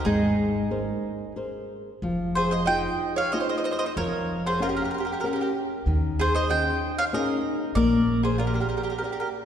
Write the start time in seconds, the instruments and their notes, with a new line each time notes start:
0.05 upright bass G#1, nylon-string guitar G#3, mandolin D#4 G#4
0.71 nylon-string guitar G#4 A#4 C5
1.36 nylon-string guitar G#4 A#4 C5
2.02 upright bass F1, nylon-string guitar F3
2.35 mandolin G#4 C5
2.51 mandolin C5 D#5
2.66 nylon-string guitar D#4 F4 G#4, mandolin D#5 G5
3.16 mandolin C#5 F5
3.32 nylon-string guitar D#4 F4 G#4, mandolin C5 D#5
3.40 mandolin C5 D#5
3.49 mandolin C5 D#5
3.58 mandolin C5 D#5
3.64 mandolin C5 D#5
3.71 mandolin C5 D#5
3.79 mandolin C5 D#5
3.86 mandolin C5 D#5
3.97 upright bass F1, nylon-string guitar F3, mandolin A#4 C#5
4.47 mandolin G#4 C5
4.60 nylon-string guitar C#4 G#4 A#4, mandolin F4 A#4
4.69 mandolin G4 A#4
4.77 mandolin G4 A#4
4.84 mandolin G4 A#4
4.91 mandolin G4 A#4
4.98 mandolin G4 A#4
5.05 mandolin G4 A#4
5.12 mandolin G4 A#4
5.20 nylon-string guitar C#4 G#4, mandolin G4 A#4
5.24 mandolin G4 A#4, nylon-string guitar A#4
5.33 mandolin G4 A#4
5.41 mandolin G4 A#4
5.86 upright bass D#2, nylon-string guitar D#3
6.19 mandolin G#4 C5
6.34 mandolin C5 D#5
6.49 nylon-string guitar C#4 D#4 G#4, mandolin D#5 G5
6.98 mandolin C#5 F5
7.13 nylon-string guitar C#4 D#4 G#4, mandolin A#4 D#5
7.75 upright bass A#1, nylon-string guitar A#3, mandolin A#4 D5
8.23 mandolin G#4 C5
8.38 mandolin F4 A#4, nylon-string guitar G#4 A#4 D5
8.47 mandolin G4 A#4
8.54 mandolin G4 A#4
8.60 mandolin G4 A#4
8.69 mandolin G4 A#4
8.77 mandolin G4 A#4
8.83 mandolin G4 A#4
8.90 mandolin G4 A#4
8.98 mandolin G4 A#4, nylon-string guitar G#4
9.03 mandolin G4 A#4, nylon-string guitar A#4 D5
9.12 mandolin G4 A#4
9.20 mandolin G4 A#4